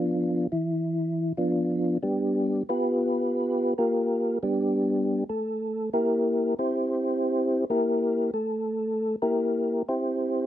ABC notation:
X:1
M:4/4
L:1/8
Q:"Swing" 1/4=92
K:C
V:1 name="Tonewheel organ"
[F,B,DF] [E,E]3 [F,B,DF]2 [G,B,DG]2 | [B,FGB]3 [^A,FG^A]2 [G,B,DG]3 | [A,A]2 [_B,EG_B]2 [CEGc]3 [B,EGB]- | [_B,EG_B] [A,A]3 [B,EGB]2 [CEGc]2 |]